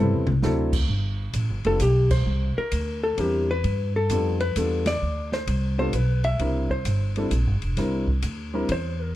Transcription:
0.00 0.12 G2 loud
0.00 0.24 G3 medium
0.00 0.24 B3 medium
0.00 0.25 C4 medium
0.00 0.25 E4 medium
0.00 0.25 A4 medium
0.12 0.27 E2 medium
0.27 0.41 C2 medium
0.27 mid tom loud
0.42 0.87 D2 loud
0.42 0.70 F#3 medium
0.42 0.70 C4 medium
0.42 0.71 D4 medium
0.42 0.71 E4 medium
0.42 0.71 A4 medium
0.42 snare medium
0.73 kick medium
0.73 crash medium
0.88 1.33 G1 medium
1.33 1.50 A1 medium
1.33 kick soft
1.33 hi-hat pedal medium
1.33 ride medium
1.50 1.64 G1 medium
1.64 1.79 F1 medium
1.64 1.79 G3 medium
1.64 1.79 B3 medium
1.64 1.79 D4 medium
1.64 1.79 F4 medium
1.64 1.79 A4 medium
1.64 1.81 A4 medium
1.64 ride soft
1.80 2.25 B1 medium
1.80 2.11 G4 medium
1.80 kick soft
1.80 hi-hat pedal medium
1.80 ride medium
2.11 2.54 C5 medium
2.11 kick medium
2.11 crash medium
2.26 2.55 C2 medium
2.58 3.00 A#4 medium
2.72 3.17 D2 medium
2.72 kick soft
2.72 hi-hat pedal medium
2.72 ride medium
3.04 3.20 A4 medium
3.17 3.62 E2 medium
3.17 3.45 G3 medium
3.17 3.46 C4 medium
3.17 3.46 D4 medium
3.17 3.46 E4 medium
3.17 3.49 G4 medium
3.17 3.46 A#4 medium
3.17 kick soft
3.17 ride medium
3.51 3.93 B4 loud
3.64 4.09 G2 medium
3.64 kick soft
3.64 ride medium
3.96 4.38 A4 medium
4.10 4.55 F2 medium
4.10 4.38 G3 medium
4.10 4.38 B3 medium
4.10 4.38 D4 medium
4.10 4.38 F4 medium
4.10 4.39 A4 medium
4.10 kick soft
4.10 hi-hat pedal medium
4.10 ride medium
4.40 4.57 B4 loud
4.40 ride soft
4.56 5.00 E2 medium
4.56 4.84 G3 medium
4.56 4.84 B3 medium
4.56 4.84 D4 medium
4.56 4.84 F4 medium
4.56 4.86 A4 medium
4.56 4.85 A4 medium
4.56 kick soft
4.56 hi-hat pedal medium
4.56 ride medium
4.86 5.30 D5 medium
4.86 snare medium
4.86 ride medium
5.02 5.46 D2 medium
5.32 5.76 C5 medium
5.32 snare medium
5.47 5.92 C2 medium
5.47 kick soft
5.47 ride medium
5.78 5.92 G3 medium
5.78 5.92 B3 medium
5.78 5.92 D4 medium
5.78 5.92 F4 medium
5.78 5.93 A4 medium
5.78 5.95 C5 medium
5.93 6.38 B1 medium
5.93 6.24 B4 medium
5.93 kick soft
5.93 hi-hat pedal medium
5.93 ride medium
6.24 6.67 E5 medium
6.24 ride soft
6.39 6.84 C2 medium
6.39 6.67 G3 medium
6.39 6.68 C4 medium
6.39 6.68 D4 medium
6.39 6.68 E4 medium
6.39 6.68 A#4 medium
6.39 kick soft
6.39 ride medium
6.70 7.13 C5 medium
6.70 kick medium
6.85 7.30 G1 medium
6.85 kick soft
6.85 hi-hat pedal medium
6.85 ride medium
7.16 7.30 G3 medium
7.16 7.30 C4 medium
7.16 7.30 D4 medium
7.16 7.31 E4 medium
7.16 7.31 A4 medium
7.16 ride soft
7.31 7.46 A#1 medium
7.31 kick soft
7.31 hi-hat pedal medium
7.31 ride medium
7.46 7.61 G1 medium
7.62 7.76 E1 medium
7.62 ride soft
7.77 8.22 C2 medium
7.77 8.05 G3 medium
7.77 8.05 C4 medium
7.77 8.05 D4 medium
7.77 8.05 E4 medium
7.77 8.05 A#4 medium
7.77 kick soft
7.77 snare soft
7.77 ride medium
8.08 kick medium
8.22 8.67 D2 medium
8.22 kick soft
8.22 hi-hat pedal medium
8.22 ride medium
8.54 8.67 G3 medium
8.54 8.68 C4 medium
8.54 8.68 D4 medium
8.54 8.68 E4 medium
8.54 8.68 A#4 medium
8.69 9.13 E2 medium
8.69 9.02 C5 medium
8.69 kick soft
8.69 ride medium
9.02 9.15 A#4 medium

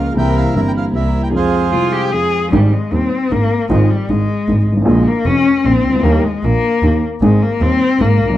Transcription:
0.00 0.14 C#2 soft
0.00 0.14 C#3 soft
0.00 0.13 F3 soft
0.00 0.14 A#3 soft
0.00 0.14 C#4 soft
0.00 0.15 C#4 soft
0.00 0.15 F4 soft
0.00 0.15 G#4 soft
0.00 0.15 A#4 soft
0.00 0.13 F5 medium
0.14 0.53 C2 medium
0.14 0.53 C3 medium
0.14 0.52 E3 medium
0.14 0.53 A#3 soft
0.14 0.53 C4 medium
0.14 0.54 C4 soft
0.14 0.53 E4 medium
0.14 0.54 G4 medium
0.14 0.54 A#4 medium
0.14 0.35 G5 medium
0.18 0.72 A#4 medium
0.18 0.55 E5 medium
0.37 0.55 F5 medium
0.53 0.92 G1 soft
0.53 0.93 G2 soft
0.53 0.89 E3 soft
0.53 0.90 A#3 soft
0.53 0.92 C4 soft
0.53 0.93 E4 soft
0.53 0.93 A#4 soft
0.53 0.61 E5 medium
0.57 0.93 G4 soft
0.68 0.72 G5 medium
0.77 0.86 F5 medium
0.91 1.31 C2 soft
0.91 1.31 C3 soft
0.91 1.30 E3 soft
0.91 1.30 A#3 soft
0.91 1.31 C4 soft
0.91 1.32 C4 soft
0.91 1.32 E4 soft
0.91 1.32 G4 soft
0.91 1.32 A#4 soft
0.96 1.22 E5 medium
1.23 1.28 G5 medium
1.32 1.70 F2 medium
1.32 1.69 F3 medium
1.32 1.70 G#3 soft
1.32 1.71 C4 soft
1.32 1.71 C4 medium
1.32 1.71 F4 medium
1.32 1.71 G#4 medium
1.32 1.71 G#4 soft
1.36 2.10 G#4 soft
1.36 2.10 C5 soft
1.36 2.10 F5 medium
1.71 2.10 C2 soft
1.71 2.11 C3 soft
1.71 2.09 F3 soft
1.71 2.10 G#3 soft
1.71 2.10 C4 soft
1.71 2.11 C4 soft
1.71 1.94 F4 medium
1.71 2.10 F4 soft
1.71 2.11 G#4 soft
1.75 2.12 G#4 soft
1.92 2.14 G4 medium
2.10 2.50 F2 soft
2.10 2.12 F3 soft
2.10 2.50 F3 soft
2.10 2.50 G#3 soft
2.10 2.50 C4 soft
2.10 2.51 C4 soft
2.10 2.50 F4 soft
2.10 2.52 G#4 medium
2.10 2.51 G#4 soft
2.52 2.69 G#1 medium
2.52 2.69 G#2 medium
2.52 2.69 D#3 medium
2.52 2.74 G3 medium
2.52 2.69 G#3 medium
2.52 2.69 C4 medium
2.52 2.69 G4 medium
2.73 2.94 G#3 medium
2.92 3.08 D#1 soft
2.92 3.08 D#2 medium
2.92 3.33 C4 medium
3.31 3.47 G#1 medium
3.31 3.48 G#1 soft
3.31 3.48 G#2 soft
3.31 3.70 A#3 medium
3.70 3.86 G#1 medium
3.70 3.86 G#2 medium
3.70 3.86 D#3 medium
3.70 3.86 G#3 medium
3.70 3.92 G#3 medium
3.70 3.87 C4 medium
3.70 3.87 F4 medium
3.90 4.11 G3 medium
4.10 4.26 G#1 medium
4.10 4.26 G#2 soft
4.10 4.68 G#3 medium
4.48 4.64 G#1 soft
4.48 4.64 G#1 medium
4.48 4.64 G#2 soft
4.67 4.86 G#1 medium
4.72 4.77 G1 soft
4.77 4.82 G#1 medium
4.82 4.87 A1 medium
4.82 5.02 A#1 medium
4.82 5.02 A#2 medium
4.82 5.02 C#3 medium
4.82 5.02 G#3 medium
4.82 5.02 A#3 medium
4.82 5.02 F4 medium
4.86 5.03 A#1 medium
4.86 5.09 G#3 medium
5.08 5.27 A#3 medium
5.25 5.42 F1 soft
5.25 5.42 F1 medium
5.25 5.42 F2 medium
5.25 5.67 C#4 medium
5.64 5.81 A#1 soft
5.64 5.81 A#1 medium
5.64 5.81 A#2 soft
5.64 6.05 C4 medium
5.84 6.02 C#2 medium
5.89 5.94 C2 soft
5.95 6.00 C#2 medium
6.00 6.04 D2 medium
6.00 6.19 D#2 medium
6.00 6.25 A#3 medium
6.04 6.21 D#2 medium
6.04 6.21 D#3 medium
6.04 6.20 G3 medium
6.04 6.21 A#3 medium
6.04 6.21 G4 medium
6.24 6.46 G#3 medium
6.43 6.60 A#1 medium
6.43 6.60 A#1 soft
6.43 6.60 A#2 soft
6.43 7.03 A#3 medium
6.82 6.99 D#2 medium
6.82 7.00 D#3 soft
7.21 7.38 G#1 medium
7.21 7.39 G#1 medium
7.21 7.39 G#2 medium
7.21 7.38 D#3 medium
7.21 7.38 G#3 medium
7.21 7.44 G#3 medium
7.21 7.38 C4 medium
7.21 7.39 G#4 medium
7.42 7.63 A#3 medium
7.60 7.78 D#1 soft
7.60 7.77 D#2 medium
7.60 7.78 D#2 soft
7.60 8.03 C4 medium
7.99 8.16 G#1 medium
7.99 8.17 G#1 soft
7.99 8.17 G#2 soft
7.99 8.38 A#3 medium
8.20 8.38 B1 medium
8.25 8.30 A#1 soft
8.30 8.35 B1 medium

